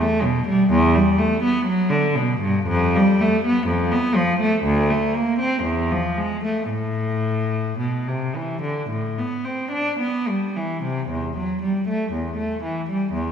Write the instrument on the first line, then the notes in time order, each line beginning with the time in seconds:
cello
0.01 A3
0.23 B2
0.47 G3
0.71 E2
0.95 G3
1.18 A3
1.43 B3
1.65 F#3
1.90 D3
2.15 B2
2.41 G2
2.67 F2
2.95 G3
3.20 A3
3.45 B3
3.67 F2
3.91 B3
4.15 F3
4.40 A3
4.64 D2
4.90 A3
5.15 A#3
5.39 C4
5.63 E2
5.91 F3
6.17 G#3
6.44 A3
6.69 A2
7.79 B2
8.07 C3
8.35 E3
8.62 D3
8.90 A2
9.18 B3
9.44 C4
9.71 D4
10.00 B3
10.28 G3
10.56 E3
10.82 C3
11.10 E2
11.37 F#3
11.62 G3
11.88 A3
12.12 E2
12.37 A3
12.63 E3
12.90 G3
13.13 E2